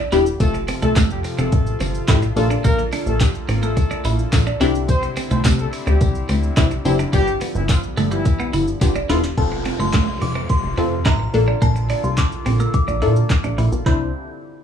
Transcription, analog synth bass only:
0.12 E1
0.40 F1
0.82 C2
0.96 F2
1.38 F1
1.53 A1
1.80 G1
2.08 A1
2.36 A#1
2.65 A#1
3.06 A#1
3.48 A1
4.05 A#1
4.33 A#1
4.61 C2
5.31 C2
5.45 C3
5.87 D2
6.01 C2
6.29 D2
6.57 C2
6.85 F#1
7.13 G1
7.55 G1
7.97 G1
8.53 G1
8.81 F1
9.09 E1
9.37 F1
9.80 G1
10.22 F1
10.64 F1
10.78 F2
11.06 A1
11.34 A#1
11.62 A#1
12.04 C2
12.46 A#1
12.88 A#1
13.02 A#2
13.44 A#1
13.58 A#1
13.72 B1
13.86 C2

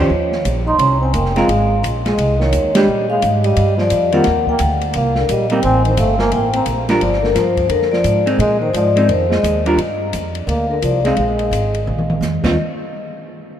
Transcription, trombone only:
Already playing: F3
0.67 D#4
0.79 C#4
1.01 C4
1.15 A#3
1.35 G#3
2.07 G#3
2.39 D#3
2.74 G3
3.09 G#3
3.44 G3
3.77 F3
4.13 A#3
4.48 A#3
4.96 A#3
5.17 D3
5.30 G3
5.50 A#3
5.64 C4
5.86 D#3
5.98 A3
6.19 A#3
6.33 A#3
6.54 C4
7.00 F3
7.22 D3
7.35 F3
7.70 D3
7.93 F3
8.39 G#3
8.61 D#3
8.74 F3
9.08 D#3
9.29 G#3
10.48 A#3
10.69 D3
10.82 F3
11.04 G#3
11.18 G#3
12.42 G2

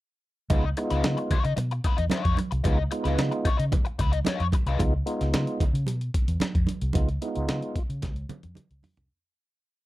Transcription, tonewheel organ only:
0.50 G#3 B3 D#4 F4
0.77 G#3 B3 D#4 E4
0.84 F4
2.65 G#3 B3 D#4 F4
2.92 G#3 B3 D#4 F4
4.79 G#3 B3 D#4 F4
5.06 G#3 B3 D#4 F4
6.94 G#3 B3 D#4 F4
7.22 G#3 B3 D#4 E4
7.28 F4

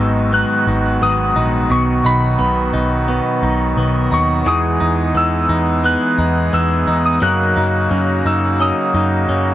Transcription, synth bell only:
Already playing: E6
0.34 F#6
1.03 D#6
1.71 C#6
2.06 B5
4.14 C#6
4.48 D#6
5.17 E6
5.85 F#6
6.54 E6
7.06 D#6
7.23 F#6
8.27 E6
8.61 D#6

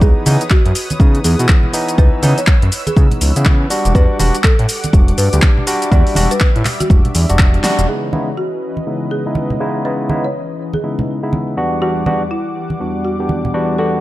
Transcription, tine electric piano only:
0.01 E3 B3 D#4
0.26 E3 B3 D#4
0.99 E3 B3 D#4
1.39 E3 B3 E4
1.73 E3 B3 D#4
1.98 E3 B3 D#4
2.22 E3 B3 D#4
2.96 E3 B3 D#4
3.36 E3 B3 E4
3.70 G3 D4 F#4
3.95 G3 D4 F#4
4.19 G3 D4 F#4
4.93 G3 D4 F#4
5.32 G3 D4 G4
5.67 G3 D4 F#4
5.91 G3 D4 F#4
6.16 G3 D4 F#4
6.90 G3 D4 F#4
7.29 G3 D4 F#4
7.63 G3 D4 F#4
7.88 C#3 G#3 B3 D#4 E4
8.13 C#3 G#3 B3 D#4 E4
8.86 C#3 G#3 B3 D#4 E4
9.26 C#3 G#3 B3 D#4 E4
9.60 C#3 G#3 B3 D#4 E4
9.85 C#3 G#3 B3 D#4 E4
10.09 C#3 G#3 B3 D#4 E4
10.83 C#3 G#3 B3 D#4 E4
11.23 C#3 G#3 B3 D#4 E4
11.57 E2 G3 B3 D4 F#4
11.81 E2 G3 B3 D4 F#4
12.06 E2 G3 B3 D4 F#4
12.80 E2 G3 B3 D4 F#4
13.19 E2 G3 B3 D4 G4
13.54 E2 G3 B3 D4 F#4
13.78 E2 G3 B3 D4 F#4

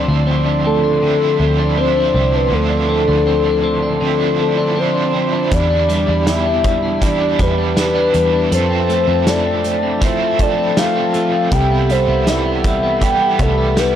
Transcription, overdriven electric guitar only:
Already playing: D3 F3 C4 D4 E4
1.01 F3 C4 D4
1.05 E4
1.75 F3 C4 D4
1.80 E4
2.49 D3 F3
2.53 C4 D4 E4
4.00 F3 C4 D4
4.05 E4
4.75 F3 C4 D4
4.80 E4
5.49 E2 B2 E3
5.54 G3 D4 E4
7.00 E3 G3 D4
7.05 E4
7.75 E3 G3 D4
7.80 E4
8.50 F3 A3
8.54 C4 E4
10.00 F3 A3 C4
10.05 E4
10.75 F3 A3 C4
11.49 C3 E3 G3
11.57 E4
13.00 E3 G3 B3
13.05 E4
13.76 E3 G3 B3
13.80 E4

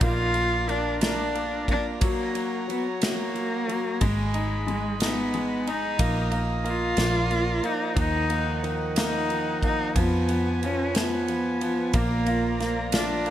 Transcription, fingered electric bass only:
0.01 A#1
2.02 F#1
4.01 G#1
5.99 A#1
6.98 A#1
7.97 D#2
9.95 F2
11.94 A#1

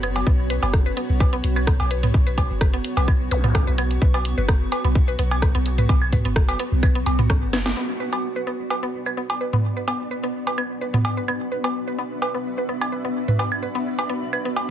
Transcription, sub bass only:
Already playing: F#1
0.27 B1
0.63 F#1
1.09 B1
1.44 B1
1.80 B1
2.14 B1
2.50 F#1
2.97 B1
3.31 B1
3.67 B1
4.02 B1
4.38 F#1
4.84 B1
5.19 B1
5.55 B1
5.89 B1
6.25 F#1
6.72 B1
7.06 B1
7.42 F#1
7.77 B1
8.13 F#1
8.59 B1
8.94 B1
9.30 B1
9.64 B1
10.00 F#1
10.47 B1
10.81 B1
11.17 B1
11.52 B1
11.88 F#1
12.34 B1
12.69 B1
13.05 B1
13.39 B1
13.75 F#1
14.22 B1
14.56 B1

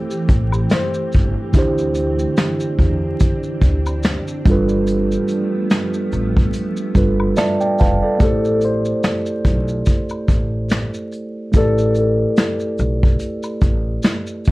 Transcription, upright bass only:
0.29 A1
1.15 G1
1.54 D2
2.79 E2
3.62 D2
4.46 G1
6.12 A1
6.95 G1
7.81 F1
8.20 A1
9.45 B1
10.28 A1
11.54 A1
12.79 B1
13.62 A1
14.48 G1

